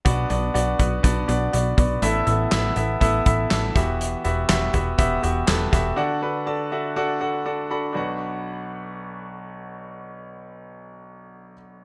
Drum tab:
HH |xxxxxxxx|xxxxxxxx|xxxxxxxx|--------|
CP |--------|--x---x-|--x---x-|--------|
SD |--------|--o---oo|--o---oo|--------|
BD |o--oo--o|----oo-o|---oo--o|--------|

HH |--------|--------|
CP |--------|--------|
SD |--------|--------|
BD |--------|--------|